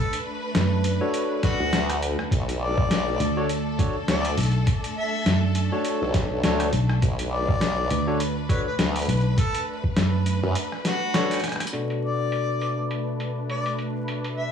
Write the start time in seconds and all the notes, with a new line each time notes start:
Already playing: A3 D4 A4 B4
0.13 closed hi-hat
0.55 F#2, snare, closed hi-hat
0.84 closed hi-hat
1.01 D4 F#4 A4 C#5
1.14 closed hi-hat
1.43 D4 F#4 A4 B4, kick, snare, closed hi-hat
1.60 D2
1.73 snare, closed hi-hat
1.90 cross-stick, closed hi-hat
2.02 closed hi-hat
2.19 cross-stick
2.31 B1 A4, kick, closed hi-hat
2.49 closed hi-hat
2.62 D5
2.78 kick
2.91 snare, closed hi-hat
3.20 D2, closed hi-hat
3.37 D4 F#4 A4 C#5
3.49 closed hi-hat
3.79 D4 F#4 A4 C#5, kick, closed hi-hat
4.08 D2 D5, snare, closed hi-hat
4.25 closed hi-hat
4.38 B1, closed hi-hat
4.40 closed hi-hat
4.43 closed hi-hat
4.46 closed hi-hat
4.52 closed hi-hat
4.67 kick, closed hi-hat
4.84 closed hi-hat
4.97 E5
5.26 F#2, snare, closed hi-hat
5.55 closed hi-hat
5.72 D4 F#4 A4 C#5
5.85 closed hi-hat
6.02 B1
6.14 kick, snare, closed hi-hat
6.44 D2 D4 F#4 A4 C#5, snare, closed hi-hat
6.60 cross-stick, closed hi-hat
6.73 B1, closed hi-hat
6.89 cross-stick
7.02 B1 B4, kick, closed hi-hat
7.19 closed hi-hat
7.32 D5
7.48 kick
7.61 snare, closed hi-hat
7.91 D2, closed hi-hat
8.07 D4 F#4 A4 C#5
8.20 closed hi-hat
8.49 D4 F#4 A4 B4 C#5, kick, closed hi-hat
8.67 B4
8.79 D2, snare, closed hi-hat
8.96 closed hi-hat
8.99 closed hi-hat
9.02 closed hi-hat
9.05 B1, closed hi-hat
9.09 closed hi-hat
9.13 closed hi-hat
9.21 closed hi-hat
9.38 A4, kick, closed hi-hat
9.55 closed hi-hat
9.84 kick
9.97 F#2, snare, closed hi-hat
10.26 closed hi-hat
10.43 F#2
10.55 closed hi-hat
10.72 cross-stick
10.85 F#4, snare, closed hi-hat
11.14 D4 F#4 A4 C#5, snare, closed hi-hat
11.31 cross-stick, closed hi-hat
11.33 cross-stick, closed hi-hat
11.37 cross-stick, closed hi-hat
11.41 cross-stick
11.44 cross-stick, closed hi-hat
11.48 cross-stick, closed hi-hat
11.52 cross-stick, closed hi-hat
11.56 cross-stick
11.60 cross-stick, closed hi-hat
11.67 closed hi-hat
11.73 B2 A3 D4 F#4 A4 B4 D5, closed hi-hat
11.90 closed hi-hat
12.03 D5
12.32 closed hi-hat
12.61 closed hi-hat
12.91 closed hi-hat
13.20 closed hi-hat
13.50 D5, closed hi-hat
13.66 closed hi-hat
13.79 closed hi-hat
14.08 closed hi-hat
14.24 closed hi-hat
14.37 E5